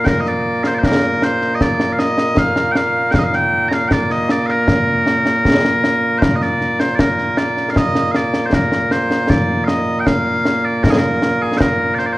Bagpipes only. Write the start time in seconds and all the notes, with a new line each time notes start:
Already playing: A#2 A#3
0.04 A#4 G5
0.20 D#5
0.28 D5
0.63 C5 F5
0.75 C5 D5
0.85 A#4
1.23 C5
1.55 D#5
1.62 D5
1.92 F5
1.99 D#5
2.38 F5
2.72 G5
2.76 F5
3.11 F5 G5
3.19 D#5
3.24 F5
3.35 G5
3.68 A#5
3.73 F5
3.88 D5 G5
4.11 D#5
4.31 D5
4.46 F5
4.50 A#4
6.18 C5
6.22 A#4
6.35 D#5
6.42 D5
6.80 C5
6.96 D5
7.00 A#4
7.38 D5
7.70 F5
7.77 D#5
8.11 D5 F5
8.46 C5
8.54 A#4
8.91 C5
9.30 D5
9.64 D#5 F5
10.00 G5
10.06 F5
10.64 D5
10.83 A#4
10.90 G#4
10.98 A#4
11.42 G#4
11.57 A#4 C5
11.95 D5
11.99 C5
12.06 D5
12.13 C5